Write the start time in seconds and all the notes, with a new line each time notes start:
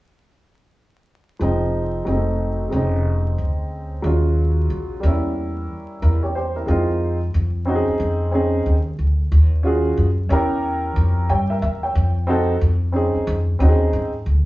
1.39 F1 F3 G#3 C4 D#4
2.05 F1 F#3 G#3 C4 D#4
2.13 A3
2.69 F1 G#3 C4
2.73 C#4 D#4
3.38 D2
4.02 D#2 F#3 G#3 C#4 F4
4.70 A#1
5.00 E2 G3 A#3
5.05 C#4 E4
6.02 E2 E4 A#4
6.23 G4 C#5
6.35 G4 C5
6.56 E4 A#4
6.66 F2 G#3 C4 D#4 F4
7.34 F2
7.65 C4 C#4 D#4 F#4
7.75 G#4
7.88 muted upright bass stroke
8.00 F2
8.31 C4 C#4 D#4 G#4
8.66 D#2
8.99 D2
9.32 D#2
9.63 C#4 F4 F#4 G#4
9.97 F#2
10.29 E2 C#4 E4 G4 A#4
10.96 F2
11.29 G2 G4 C#5 G5
11.50 A#4 E5
11.62 E2 E5
11.83 C#5 G5
11.95 F2
12.27 C4 D#4 F#4 A4
12.61 F2
12.92 C4 C#4 D#4 G#4
13.15 muted upright bass stroke
13.27 F2
13.59 D#2 C4 C#4 D#4 F#4
13.69 G#4
13.93 G#2
14.26 D2